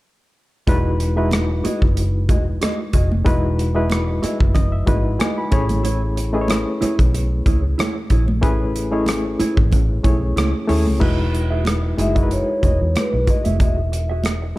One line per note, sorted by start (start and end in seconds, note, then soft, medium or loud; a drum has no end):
0.67 1.61 E1 medium
0.67 1.04 G#3 medium
0.67 1.05 D#4 medium
0.67 1.05 E4 medium
0.67 0.88 F#4 medium
0.67 1.05 F#4 medium
0.67 0.89 G#4 medium
0.67 1.05 B4 loud
0.67 0.89 D#5 medium
0.67 kick loud
0.67 closed hi-hat medium
0.67 muted conga soft
1.00 muted clean electric guitar stroke soft
1.00 closed hi-hat medium
1.16 2.15 G#3 medium
1.16 2.15 D#4 medium
1.16 2.15 E4 medium
1.16 2.15 F#4 medium
1.16 1.29 F#4 soft
1.16 1.29 G#4 soft
1.16 2.15 B4 medium
1.16 1.28 E5 medium
1.31 cross-stick loud
1.31 closed hi-hat medium
1.31 high conga medium
1.49 muted clean electric guitar stroke soft
1.64 1.81 F#4 medium
1.64 1.81 G#4 medium
1.64 1.81 D#5 medium
1.64 closed hi-hat medium
1.64 muted conga soft
1.82 2.30 F#1 medium
1.82 muted clean electric guitar stroke soft
1.82 kick medium
1.97 muted clean electric guitar stroke soft
1.97 closed hi-hat medium
2.29 2.57 E1 medium
2.29 2.42 F#4 soft
2.29 2.42 G#4 soft
2.29 2.43 D#5 medium
2.29 kick medium
2.29 closed hi-hat medium
2.29 muted conga soft
2.46 muted clean electric guitar stroke soft
2.61 2.78 F#4 medium
2.61 2.78 G#4 medium
2.61 2.78 D#5 medium
2.61 cross-stick loud
2.61 closed hi-hat medium
2.61 high conga medium
2.79 muted clean electric guitar stroke soft
2.93 3.22 F1 medium
2.93 3.06 F#4 medium
2.93 3.07 G#4 medium
2.93 3.07 D#5 medium
2.93 kick medium
2.93 closed hi-hat medium
3.11 muted clean electric guitar stroke soft
3.11 high conga medium
3.24 4.19 E1 loud
3.24 3.62 G#3 medium
3.24 3.62 D#4 medium
3.24 3.63 E4 medium
3.24 3.63 F#4 medium
3.24 3.42 F#4 medium
3.24 3.43 G#4 medium
3.24 3.63 B4 loud
3.24 3.43 D#5 medium
3.24 kick loud
3.24 closed hi-hat medium
3.24 muted conga soft
3.58 muted clean electric guitar stroke soft
3.58 closed hi-hat medium
3.74 4.60 G#3 medium
3.74 4.60 E4 medium
3.74 4.60 F#4 medium
3.74 3.87 F#4 soft
3.74 3.87 G#4 medium
3.74 4.60 B4 medium
3.74 4.53 D#5 medium
3.74 3.86 E5 medium
3.90 cross-stick medium
3.90 closed hi-hat medium
3.90 high conga medium
4.08 muted clean electric guitar stroke soft
4.22 4.39 F#4 medium
4.22 4.40 G#4 medium
4.22 4.39 D#5 medium
4.22 4.53 E5 medium
4.22 muted fingered electric bass stroke soft
4.22 cross-stick soft
4.22 closed hi-hat medium
4.22 muted conga soft
4.40 4.81 F#1 medium
4.40 muted clean electric guitar stroke soft
4.40 kick medium
4.55 4.71 D#5 medium
4.55 muted clean electric guitar stroke soft
4.55 kick medium
4.55 closed hi-hat medium
4.55 low conga medium
4.72 4.86 E5 medium
4.86 5.16 G#1 medium
4.86 5.37 G#3 medium
4.86 5.37 D#4 medium
4.86 5.37 E4 medium
4.86 5.00 F#4 medium
4.86 5.38 F#4 medium
4.86 5.01 G#4 medium
4.86 5.38 B4 medium
4.86 5.01 D#5 medium
4.86 5.17 F#5 medium
4.86 kick medium
4.86 closed hi-hat medium
4.86 muted conga soft
4.86 low conga medium
5.05 muted clean electric guitar stroke soft
5.19 5.36 F#4 medium
5.19 5.36 G#4 medium
5.19 5.36 D#5 medium
5.19 5.36 G#5 medium
5.19 cross-stick loud
5.19 closed hi-hat medium
5.19 high conga medium
5.37 5.51 B5 medium
5.37 muted clean electric guitar stroke soft
5.51 6.64 A1 medium
5.51 6.16 A3 medium
5.51 6.17 C#4 medium
5.51 5.65 E4 medium
5.51 6.17 E4 medium
5.51 5.65 G#4 medium
5.51 6.17 G#4 medium
5.51 6.17 C#5 medium
5.51 5.65 C#5 medium
5.51 5.82 B5 medium
5.51 kick medium
5.51 closed hi-hat medium
5.69 muted clean electric guitar stroke soft
5.69 closed hi-hat medium
5.69 high conga medium
5.83 6.00 E4 medium
5.83 6.01 G#4 medium
5.83 6.01 C#5 medium
5.83 closed hi-hat medium
5.83 muted conga soft
6.16 muted clean electric guitar stroke soft
6.16 closed hi-hat medium
6.33 7.31 A3 medium
6.33 7.31 C#4 medium
6.33 7.32 E4 medium
6.33 6.46 E4 soft
6.33 6.45 G#4 soft
6.33 7.32 G#4 medium
6.33 6.40 B4 medium
6.33 6.45 D#5 medium
6.41 7.35 C#5 medium
6.48 cross-stick medium
6.48 closed hi-hat medium
6.48 high conga medium
6.66 muted clean electric guitar stroke soft
6.81 6.97 E4 medium
6.81 6.98 G#4 medium
6.81 6.97 C#5 medium
6.81 muted fingered electric bass stroke soft
6.81 cross-stick soft
6.81 closed hi-hat medium
6.81 muted conga soft
6.99 7.40 B1 medium
6.99 muted clean electric guitar stroke soft
6.99 kick medium
6.99 closed hi-hat soft
7.14 muted clean electric guitar stroke soft
7.14 closed hi-hat medium
7.46 7.74 C#2 medium
7.46 7.59 E4 medium
7.46 7.59 G#4 medium
7.46 7.59 C#5 medium
7.46 kick medium
7.46 closed hi-hat medium
7.46 muted conga soft
7.63 muted clean electric guitar stroke soft
7.78 7.94 E4 medium
7.78 7.95 G#4 medium
7.78 7.94 C#5 medium
7.78 cross-stick loud
7.78 closed hi-hat medium
7.78 high conga medium
7.96 muted clean electric guitar stroke soft
8.10 8.43 A#1 medium
8.10 8.23 E4 medium
8.10 8.24 G#4 medium
8.10 8.24 C#5 medium
8.10 kick medium
8.10 closed hi-hat medium
8.28 muted clean electric guitar stroke soft
8.28 high conga medium
8.41 9.36 A1 medium
8.41 8.79 A3 medium
8.41 8.79 C#4 medium
8.41 8.80 E4 medium
8.41 8.59 E4 medium
8.41 8.80 G#4 medium
8.41 8.60 G#4 medium
8.41 8.80 B4 loud
8.41 8.60 C#5 medium
8.41 kick loud
8.41 closed hi-hat medium
8.41 muted conga soft
8.76 muted clean electric guitar stroke soft
8.76 closed hi-hat medium
8.92 9.77 A3 medium
8.92 9.77 C#4 medium
8.92 9.77 E4 medium
8.92 9.04 E4 soft
8.92 9.77 G#4 medium
8.92 9.04 G#4 soft
8.92 9.77 C#5 medium
8.92 9.03 D#5 medium
9.06 cross-stick medium
9.06 closed hi-hat medium
9.06 high conga medium
9.25 muted clean electric guitar stroke soft
9.39 9.56 E4 medium
9.39 9.56 G#4 medium
9.39 9.56 C#5 medium
9.39 muted fingered electric bass stroke soft
9.39 closed hi-hat medium
9.39 muted conga soft
9.57 9.98 A1 medium
9.57 muted clean electric guitar stroke soft
9.57 kick medium
9.57 low conga medium
9.71 muted clean electric guitar stroke soft
9.71 kick medium
9.71 closed hi-hat medium
9.71 low conga medium
10.03 10.32 B1 medium
10.03 10.54 A3 medium
10.03 10.54 C#4 medium
10.03 10.54 E4 medium
10.03 10.17 E4 medium
10.03 10.54 G#4 medium
10.03 10.17 G#4 soft
10.03 10.55 C#5 medium
10.03 10.18 C#5 medium
10.03 kick medium
10.03 closed hi-hat medium
10.03 muted conga soft
10.03 low conga medium
10.22 muted clean electric guitar stroke soft
10.36 10.52 C#2 medium
10.36 10.53 E4 medium
10.36 10.53 G#4 medium
10.36 10.53 C#5 medium
10.36 cross-stick loud
10.36 closed hi-hat medium
10.36 high conga medium
10.54 muted clean electric guitar stroke soft
10.67 10.86 D#2 medium
10.67 10.93 A3 medium
10.67 10.94 C#4 medium
10.67 10.94 E4 medium
10.67 10.82 E4 soft
10.67 10.94 G#4 medium
10.67 10.82 G#4 medium
10.67 10.94 C#5 medium
10.67 10.82 C#5 medium
10.67 open hi-hat medium
10.86 10.99 C#2 medium
10.86 muted clean electric guitar stroke soft
10.86 high conga medium
11.00 11.95 E1 medium
11.00 11.75 G#3 medium
11.00 11.75 D#4 medium
11.00 11.75 E4 medium
11.00 11.75 F#4 medium
11.00 11.18 F#4 medium
11.00 11.18 G#4 medium
11.00 11.75 B4 loud
11.00 11.17 D#5 medium
11.00 kick loud
11.00 crash medium
11.00 muted conga soft
11.18 muted clean electric guitar stroke soft
11.34 muted clean electric guitar stroke soft
11.34 closed hi-hat medium
11.50 11.63 F#4 soft
11.50 11.62 G#4 soft
11.50 11.62 E5 soft
11.65 muted clean electric guitar stroke soft
11.65 cross-stick medium
11.65 closed hi-hat medium
11.65 high conga medium
11.83 muted clean electric guitar stroke soft
11.97 12.41 F#1 medium
11.97 12.11 G#3 medium
11.97 12.11 D#4 medium
11.97 12.11 E4 medium
11.97 12.12 F#4 medium
11.97 12.12 G#4 medium
11.97 12.15 E5 medium
11.97 closed hi-hat medium
11.97 muted conga medium
12.15 13.13 G#3 medium
12.15 13.13 D#4 medium
12.15 13.13 E4 medium
12.15 13.14 F#4 medium
12.15 12.30 F#4 medium
12.15 12.30 G#4 medium
12.15 12.22 A#4 medium
12.15 12.30 D#5 medium
12.15 kick medium
12.15 closed hi-hat soft
12.23 13.17 B4 medium
12.31 12.98 C#5 medium
12.31 muted clean electric guitar stroke soft
12.31 closed hi-hat medium
12.48 muted clean electric guitar stroke soft
12.63 12.78 E1 medium
12.63 12.79 F#4 medium
12.63 12.80 G#4 medium
12.63 12.79 D#5 medium
12.63 kick medium
12.63 closed hi-hat medium
12.63 muted conga soft
12.80 12.94 E2 medium
12.80 muted clean electric guitar stroke soft
12.95 13.30 B4 medium
12.95 muted clean electric guitar stroke soft
12.95 muted fingered electric bass stroke soft
12.95 cross-stick medium
12.95 closed hi-hat medium
12.95 high conga medium
13.13 13.26 B1 medium
13.13 muted clean electric guitar stroke soft
13.27 13.40 F#4 soft
13.27 13.40 G#4 medium
13.27 13.41 D#5 medium
13.27 13.44 D#5 medium
13.27 kick medium
13.27 closed hi-hat medium
13.45 13.61 F1 medium
13.45 13.56 F#4 soft
13.45 13.56 G#4 soft
13.45 13.56 E5 medium
13.45 closed hi-hat soft
13.45 high conga medium
13.59 14.53 E1 medium
13.59 13.76 F#4 medium
13.59 13.76 G#4 medium
13.59 13.76 D#5 medium
13.59 14.21 E5 medium
13.59 kick loud
13.59 closed hi-hat medium
13.78 muted clean electric guitar stroke soft
13.92 muted clean electric guitar stroke soft
13.92 closed hi-hat medium
14.10 14.21 F#4 soft
14.10 14.21 G#4 soft
14.10 14.20 E5 medium
14.24 muted clean electric guitar stroke soft
14.24 cross-stick medium
14.24 closed hi-hat medium
14.24 high conga medium
14.42 muted clean electric guitar stroke soft